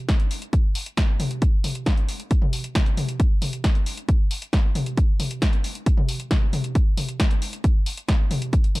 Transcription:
0.09 kick, snare, closed hi-hat
0.20 closed hi-hat
0.31 open hi-hat
0.42 closed hi-hat
0.53 kick, closed hi-hat
0.75 open hi-hat
0.86 closed hi-hat
0.97 kick, snare, closed hi-hat
1.20 open hi-hat, mid tom
1.31 closed hi-hat
1.42 kick, closed hi-hat
1.64 open hi-hat, mid tom
1.75 closed hi-hat
1.86 kick, snare, closed hi-hat
1.97 closed hi-hat
2.09 open hi-hat
2.20 closed hi-hat
2.31 kick, closed hi-hat
2.42 mid tom
2.53 open hi-hat
2.64 closed hi-hat
2.75 kick, snare, closed hi-hat, mid tom
2.86 closed hi-hat
2.97 open hi-hat, mid tom
3.09 closed hi-hat
3.20 kick, closed hi-hat
3.42 open hi-hat, mid tom
3.53 closed hi-hat
3.64 kick, snare, closed hi-hat
3.75 closed hi-hat
3.86 open hi-hat
3.97 closed hi-hat
4.09 kick, closed hi-hat
4.31 open hi-hat
4.42 closed hi-hat
4.53 kick, snare, closed hi-hat
4.75 open hi-hat, mid tom
4.86 closed hi-hat
4.97 kick, closed hi-hat
5.20 open hi-hat, mid tom
5.31 closed hi-hat
5.42 kick, snare, closed hi-hat
5.53 closed hi-hat
5.64 open hi-hat
5.75 closed hi-hat
5.86 kick, closed hi-hat
5.97 mid tom
6.09 open hi-hat
6.20 closed hi-hat
6.31 kick, snare, closed hi-hat, mid tom
6.53 open hi-hat, mid tom
6.64 closed hi-hat
6.75 kick, closed hi-hat
6.97 open hi-hat, mid tom
7.09 closed hi-hat
7.20 kick, snare, closed hi-hat
7.31 closed hi-hat
7.42 open hi-hat
7.53 closed hi-hat
7.64 kick, closed hi-hat
7.86 open hi-hat
7.97 closed hi-hat
8.09 kick, snare, closed hi-hat
8.31 open hi-hat, mid tom
8.42 closed hi-hat
8.53 kick, closed hi-hat
8.64 closed hi-hat
8.75 open hi-hat, mid tom

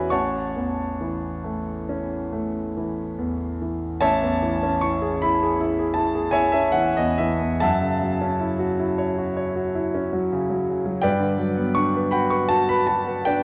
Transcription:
Already playing: E2 E3 C#4 F#4 G#4 B4 C#5 D5 E5 F#5 G#5 B5
0.10 A1 C#5 F#5 A5 C#6
0.56 E2
1.01 E3
1.44 A3
1.89 C#4
2.33 A3
2.77 E3
3.18 E2
3.62 E3
4.01 A1 C#5 E5 A5
4.22 E2
4.43 E3
4.63 C#4
4.81 E4 C#6
5.02 G#4
5.22 E4 B5
5.43 G#4
5.60 E4
5.79 G#4
5.94 E4 A5
6.15 G#4
6.31 E4 C#5 E5 G#5
6.52 C#4 E5
6.72 E3 F#5
6.97 E2 D#5
7.18 E3 E5
7.41 E2
7.60 F#2 E5 F#5 A5
7.81 C#3
8.01 F#3
8.21 C#4
8.40 E4
8.59 F#4
8.79 E4
8.98 C#5
9.18 F#4
9.37 C#5
9.56 F#4
9.75 E4
9.94 C#4
10.13 F#3
10.32 C#3
10.50 F#3
10.69 C#3
10.86 F#3
11.02 G2 B4 D5 G5
11.20 D3
11.38 F#3
11.57 B3
11.75 D4 C#6
11.96 B4
12.11 F#4 F#5 G5 B5
12.30 B4 C#6
12.49 F#4 A5
12.69 B4 B5
12.87 F#4 A5
13.08 B4
13.25 D4 B4 D5 G5

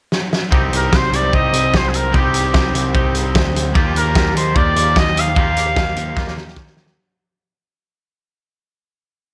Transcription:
0.12 snare
0.33 snare
0.51 C2 G3 C4 D#4 G4, kick
0.72 C2, closed hi-hat
0.76 A#4
0.92 C2, kick, snare
0.96 C5
1.12 C2 D5, closed hi-hat
1.32 C2 C4 D#4 G4 D#5, kick
1.53 C2, closed hi-hat
1.74 C2 C5, kick, snare
1.89 G#4
1.94 A#4, closed hi-hat
2.12 C2 G3 C4 D#4, kick
2.16 G4
2.34 closed hi-hat
2.54 C2, kick, snare
2.74 C2, closed hi-hat
2.94 C2 C4 D#4 G4, kick
3.15 closed hi-hat
3.35 D2, kick, snare
3.56 snare, closed hi-hat
3.73 D#2 F3 A#3 D#4 F4 G4, kick
3.95 D#2 A#4, closed hi-hat
4.15 D#2, kick, snare
4.35 D#2 C5, closed hi-hat
4.54 D#2 F3 A#3 F4 G4 D5, kick
4.75 D#2, closed hi-hat
4.96 D#2 D#5, kick, snare
5.17 F5, closed hi-hat
5.36 D#2 F3 A#3 D#4 F4 G4, kick
5.56 closed hi-hat
5.76 D#2, kick, snare
5.96 D#2, closed hi-hat
6.15 D#2 F3 A#3 F4 G4, kick, snare
6.27 snare
6.37 snare
6.47 snare
6.56 D#2, kick, snare
6.67 snare
6.77 snare
6.86 snare

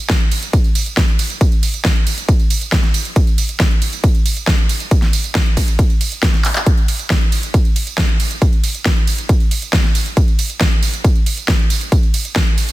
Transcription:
0.10 kick, snare, closed hi-hat, ride, tambourine
0.21 closed hi-hat, tambourine
0.32 open hi-hat, ride, tambourine
0.42 closed hi-hat, tambourine
0.53 kick, closed hi-hat, ride, tambourine
0.64 closed hi-hat, tambourine
0.75 open hi-hat, ride, tambourine
0.86 closed hi-hat, tambourine
0.97 kick, snare, closed hi-hat, ride, tambourine
1.08 closed hi-hat, tambourine
1.19 open hi-hat, ride, tambourine
1.30 closed hi-hat, tambourine
1.41 kick, closed hi-hat, ride, tambourine
1.52 closed hi-hat, tambourine
1.63 open hi-hat, ride, tambourine
1.74 closed hi-hat, tambourine
1.85 kick, snare, closed hi-hat, ride, tambourine
1.96 closed hi-hat, tambourine
2.07 open hi-hat, ride, tambourine
2.18 closed hi-hat, tambourine
2.29 kick, closed hi-hat, ride, tambourine
2.40 closed hi-hat, tambourine
2.50 open hi-hat, ride, tambourine
2.61 closed hi-hat, tambourine
2.72 kick, snare, closed hi-hat, ride, tambourine
2.83 snare, closed hi-hat, tambourine
2.94 open hi-hat, ride, tambourine
3.05 closed hi-hat, tambourine
3.16 kick, closed hi-hat, ride, tambourine
3.27 closed hi-hat, tambourine
3.38 open hi-hat, ride, tambourine
3.49 closed hi-hat, tambourine
3.60 kick, snare, closed hi-hat, ride, tambourine
3.71 closed hi-hat, tambourine
3.82 open hi-hat, ride, tambourine
3.93 closed hi-hat, tambourine
4.04 kick, closed hi-hat, ride, tambourine
4.15 closed hi-hat, tambourine
4.26 open hi-hat, ride, tambourine
4.37 closed hi-hat, tambourine
4.47 kick, snare, closed hi-hat, ride, tambourine
4.58 closed hi-hat, tambourine
4.69 open hi-hat, ride, tambourine
4.80 closed hi-hat, tambourine
4.91 kick, closed hi-hat, ride, tambourine
5.02 snare, closed hi-hat, tambourine
5.13 open hi-hat, ride, tambourine
5.24 closed hi-hat, tambourine
5.35 kick, snare, closed hi-hat, ride, tambourine
5.46 closed hi-hat, tambourine
5.57 kick, open hi-hat, ride, tambourine
5.68 closed hi-hat, tambourine
5.79 kick, closed hi-hat, ride, tambourine
5.90 closed hi-hat, tambourine
6.01 open hi-hat, ride, tambourine
6.12 closed hi-hat, tambourine
6.23 kick, snare, closed hi-hat, ride, tambourine
6.34 snare, closed hi-hat, tambourine
6.45 clap, open hi-hat, ride, tambourine
6.56 clap, closed hi-hat, tambourine
6.66 kick, closed hi-hat, ride, tambourine
6.77 closed hi-hat, tambourine
6.88 open hi-hat, ride, tambourine
6.99 closed hi-hat, tambourine
7.10 kick, snare, closed hi-hat, ride, tambourine
7.21 closed hi-hat, tambourine
7.32 open hi-hat, ride, tambourine
7.43 closed hi-hat, tambourine
7.54 kick, closed hi-hat, ride, tambourine
7.65 closed hi-hat, tambourine
7.76 open hi-hat, ride, tambourine
7.87 closed hi-hat, tambourine
7.98 kick, snare, closed hi-hat, ride
8.09 closed hi-hat, tambourine
8.20 open hi-hat, ride, tambourine
8.31 closed hi-hat, tambourine
8.42 kick, closed hi-hat, ride, tambourine
8.53 closed hi-hat, tambourine
8.64 open hi-hat, ride, tambourine
8.75 closed hi-hat, tambourine
8.85 kick, snare, closed hi-hat, ride, tambourine
8.96 closed hi-hat, tambourine
9.07 open hi-hat, ride, tambourine
9.18 closed hi-hat, tambourine
9.29 kick, closed hi-hat, ride, tambourine
9.40 closed hi-hat, tambourine
9.51 open hi-hat, ride, tambourine
9.62 closed hi-hat, tambourine
9.73 kick, snare, closed hi-hat, ride, tambourine
9.84 snare, closed hi-hat, tambourine
9.95 open hi-hat, ride, tambourine
10.06 closed hi-hat, tambourine
10.17 kick, closed hi-hat, ride, tambourine
10.28 closed hi-hat, tambourine
10.39 open hi-hat, ride, tambourine
10.50 closed hi-hat, tambourine
10.61 kick, snare, closed hi-hat, ride, tambourine
10.72 closed hi-hat, tambourine
10.83 open hi-hat, ride, tambourine
10.94 closed hi-hat, tambourine
11.04 kick, closed hi-hat, ride, tambourine
11.15 closed hi-hat, tambourine
11.26 open hi-hat, ride, tambourine
11.37 closed hi-hat, tambourine
11.48 kick, snare, closed hi-hat, ride, tambourine
11.59 closed hi-hat, tambourine
11.70 open hi-hat, ride, tambourine
11.81 closed hi-hat, tambourine
11.92 kick, closed hi-hat, ride, tambourine
12.03 closed hi-hat, tambourine
12.14 open hi-hat, ride, tambourine
12.25 closed hi-hat, tambourine
12.36 kick, snare, closed hi-hat, ride, tambourine
12.47 closed hi-hat, tambourine
12.58 open hi-hat, ride, tambourine
12.69 closed hi-hat, tambourine

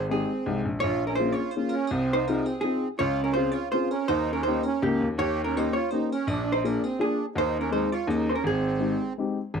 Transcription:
Already playing: G#1 G#4
0.10 G#3 C4 D#4 G4 G#4
0.46 C2 G#3 C4 D#4 G4
0.65 A#1
0.80 A#1 F4 C#5
1.07 C#4 A#4
1.15 F4 C5
1.20 A#3 C#4 F4 G#4
1.32 F4 C#5
1.51 C5
1.56 A#3 C#4 F4 G#4
1.69 C#4 A#4
1.87 C2 C4 G#4
2.13 D#4 C5
2.27 C4 D#4 F4 G#4 A#4
2.45 C4 G#4
2.61 C4 D#4 F4 G#4
2.99 C#2 F4 C#5
3.23 C#4 A#4
3.34 C4 C#4 F4 G#4 C5
3.52 F4 C#5
3.70 C4 C#4 F4 C5
3.74 G#4
3.90 C#4 A#4
4.08 D#2 D#4 C5
4.33 C#4 A#4
4.43 A#3 D#4 C5
4.47 C#4 D#4 G4
4.63 C#4 A#4
4.82 C#2 A#3 C#4 D#4 G4
5.01 D#2
5.18 D#2 G4 C#5
5.44 C#4 A#4
5.56 A#3 C#4 D#4 G4 C5
5.73 F4 C#5
5.91 A#3 C#4 D#4 G4 C5
6.12 C#4 A#4
6.27 A#1 D4 G#4
6.52 D#4 C5
6.64 A#3 D4 F4 G#4 A#4
6.83 C4 G#4
6.99 A#3 D4 F4 G#4
7.36 D#2 D#4 C5
7.60 C#4 A#4
7.71 G#3 C4 D#4 G#4 C5
7.92 F4 C#5
8.07 D#2 A#3 C#4 D#4 G#4 C5
8.29 C#4 D#4 C5
8.35 A#4
8.44 G#1 C4 G#4
8.79 G#3 C4 D#4 G4
9.18 G#3 C4 D#4 G4
9.54 G#1

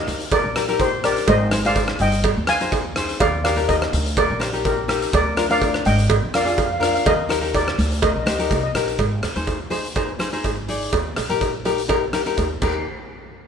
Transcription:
Already playing: D#4 G4 A#4 D#5
0.07 D2, closed hi-hat
0.20 closed hi-hat
0.32 A#4 D5, kick, closed hi-hat, cowbell
0.44 A#1
0.56 D#4 G4 A#4, cross-stick, closed hi-hat
0.68 D#4 G4 A#4, closed hi-hat
0.79 G4 C5, kick, closed hi-hat, cowbell
1.04 D#4 G4 A#4 D5, cross-stick, closed hi-hat
1.17 closed hi-hat
1.27 G#1 C5 D#5, kick, closed hi-hat, cowbell
1.51 D#4 G#4 C5, cross-stick, closed hi-hat
1.65 D#4 G#4 C5 D5 F5, closed hi-hat
1.75 kick, closed hi-hat, cowbell
1.88 cross-stick
1.99 G1 D#5 G5, closed hi-hat
2.12 closed hi-hat
2.24 kick, closed hi-hat, cowbell
2.37 D#2
2.47 D#4 G#4 C5 F5 G#5, cross-stick, closed hi-hat
2.61 D#4 G#4 C5, closed hi-hat
2.72 kick, closed hi-hat, cowbell
2.96 D#4 G#4 C5, cross-stick, closed hi-hat
3.09 closed hi-hat
3.20 D#2 D5 F5, kick, closed hi-hat, cowbell
3.44 D#4 G4 A#4 D5 F5, cross-stick, closed hi-hat
3.56 D#4 G4 A#4, closed hi-hat
3.68 A#4 D#5, kick, closed hi-hat, cowbell
3.82 cross-stick
3.93 D2, closed hi-hat
4.06 closed hi-hat
4.17 A#4 D5, kick, closed hi-hat, cowbell
4.30 A#1
4.40 D#4 G4 C5, cross-stick, closed hi-hat
4.53 D#4 G4 A#4, closed hi-hat
4.65 G4 A#4, kick, closed hi-hat, cowbell
4.88 D#4 G4 A#4, cross-stick, closed hi-hat
5.02 closed hi-hat
5.13 D2 A#4 D5, kick, closed hi-hat, cowbell
5.36 D4 F4 A#4, cross-stick, closed hi-hat
5.49 D4 F4 A#4 D5 F5, closed hi-hat
5.61 kick, closed hi-hat, cowbell
5.74 cross-stick
5.85 G#1 D#5 G5, closed hi-hat
5.98 closed hi-hat
6.10 kick, closed hi-hat, cowbell
6.22 F2
6.34 D4 F4 A#4 D5 F5, cross-stick, closed hi-hat
6.43 D4 F4 G#4 F5
6.47 F5, closed hi-hat
6.57 F5, kick, closed hi-hat, cowbell
6.65 F5
6.73 F5
6.80 D4 F4 A#4 F5, cross-stick, closed hi-hat
6.87 F5
6.95 F5, closed hi-hat
7.06 D#2 A#4 D#5, kick, closed hi-hat, cowbell
7.29 D#4 G4 A#4, cross-stick, closed hi-hat
7.41 D#4 G4 A#4, closed hi-hat
7.54 A#4 D5, kick, closed hi-hat, cowbell
7.68 cross-stick
7.78 D2, closed hi-hat
7.92 closed hi-hat
8.02 A#4 D#5, kick, closed hi-hat, cowbell
8.12 A#1 D#5
8.19 D#5
8.26 D2 D#4 G4 C5 D#5, cross-stick, closed hi-hat
8.33 D#5
8.38 D#4 G4 A#4 D#5, closed hi-hat
8.48 C2 D#5, kick, closed hi-hat, cowbell
8.56 D#5
8.63 D#5
8.75 A#1 D#4 G4 A#4, cross-stick, closed hi-hat
8.88 closed hi-hat
8.98 G#1, kick, closed hi-hat, cowbell
9.23 D#2, cross-stick, closed hi-hat, cowbell
9.36 D#2 D#4 G#4 C5, closed hi-hat
9.47 kick, closed hi-hat, cowbell
9.70 D#4 G#4 C5, closed hi-hat, cowbell
9.85 closed hi-hat
9.96 D#4 G#4 C5, kick, closed hi-hat, cowbell
10.19 D#4 G#4 C5, cross-stick, closed hi-hat
10.32 D#4 G#4 C5, closed hi-hat
10.44 G#1, kick, closed hi-hat, cowbell
10.68 D#4 G#4 D5, closed hi-hat
10.81 closed hi-hat
10.92 D#2, kick, closed hi-hat, cowbell
11.16 A#1, cross-stick, closed hi-hat, cowbell
11.29 A#1 D#4 G4 A#4, closed hi-hat
11.41 kick, closed hi-hat, cowbell
11.65 D#4 G4 A#4, closed hi-hat, cowbell
11.78 closed hi-hat
11.88 D#4 G4 A#4, kick, closed hi-hat, cowbell
12.13 D#4 G4 A#4, cross-stick, closed hi-hat
12.26 D#4 G4 A#4, closed hi-hat
12.37 D#2, kick, closed hi-hat, cowbell
12.62 D#2 D#4 G4 A#4, kick, crash, cowbell

